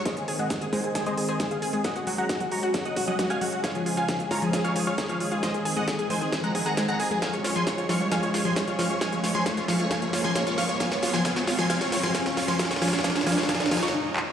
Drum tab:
HH |x-x-o-x-x-x-o-x-x-x-o---x-x-o-x-|x-x-o-x-x-x-o-x-x-x-o-x-x-x-o-x-|x-x-o-x-x-x-o-x-x-x-o-x-x-x-o-x-|x-x-o---x-x-o-x-x-x-o-x-x-x-o-x-|
CP |--------------------------------|--------------------------------|--------------------------------|--------------------------------|
SD |o-------o-------o-------o-------|o-------o-------o-------o-------|o-------o-------o-------o-------|o-------o-------o-------o-------|
BD |o-------o---o---o-------o-------|o-------o-------o---o---o-------|o-------o---o---o-------o-------|o-------o-------o---o---o-------|

HH |x-x-o---x-x-o-x-x-x-o-x-x-x-o-x-|x-x-o-x-x-x-o-x-x-x-o-x-x-x-o-x-|x-x-o---x-x-o-x-x-x-o---x-x-o-x-|x-x-o-x-x-x-o-x-x-x-o-x---------|
CP |--------------------------------|--------------------------------|--------------------------------|----------------------------x---|
SD |o---o---o---o---o---o---o---o---|o---o---o---o---o---o---o---o---|o-o-o-o-o-o-o-o-o-o-o-o-o-o-o-o-|oooooooooooooooooooooooo--------|
BD |o-------o---o---o-------o-------|o-------o-------o---o---o-------|o-------o---o---o-------o-------|o-------o-------o---o-----------|